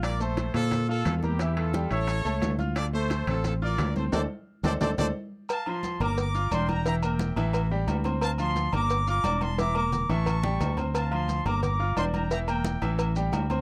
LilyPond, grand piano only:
\new Staff \with { instrumentName = "Grand piano" } { \time 4/4 \key d \minor \tempo 4 = 176 <f' f'' f'''>8 <a a' a''>4 <bes c'' f''>4 <f' f'' f'''>4 <bes bes' bes''>8 | <e e' e''>4 <g g' g''>8 <e' e'' e'''>4 <a a' a''>4 <f' f'' f'''>8~ | <f' f'' f'''>8 <a a' a''>4 <c' c'' c'''>4 <f' f'' f'''>4 <c' c'' c'''>8 | <a' c'' d''>8 r4 <a' c'' d''>8 <a' c'' d''>8 <a' c'' d''>8 r4 |
r8 <f f' f''>4 <bes bes' bes''>4 <f' f'' f'''>8 <d' d'' d'''>4 | <e e' e''>8 <bes bes' bes''>4 <e e' e''>4 <g g' g''>4 <c' c'' c'''>8~ | <c' c'' c'''>8 <f f' f''>4 <bes bes' bes''>4 <f' f'' f'''>8 <d' d'' d'''>4 | <e e' e''>8 <bes bes' bes''>4 <e e' e''>4 <g g' g''>4 <c' c'' c'''>8~ |
<c' c'' c'''>8 <f f' f''>4 <bes bes' bes''>4 <f' f'' f'''>8 <d' d'' d'''>4 | <e e' e''>8 <bes bes' bes''>4 <e e' e''>4 <g g' g''>4 <c' c'' c'''>8 | }